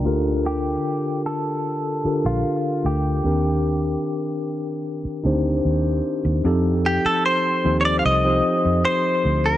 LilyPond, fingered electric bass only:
\new Staff \with { instrumentName = "Fingered electric bass" } { \clef bass \time 4/4 \key f \mixolydian \tempo 4 = 75 d,4 r4. r16 bes,,16 r8 d,8 | ees,4 r4. d,8 ees,8 r16 ees,16 | f,8. r8. ees,8 c,8 r16 f,16 r8 d,8 | }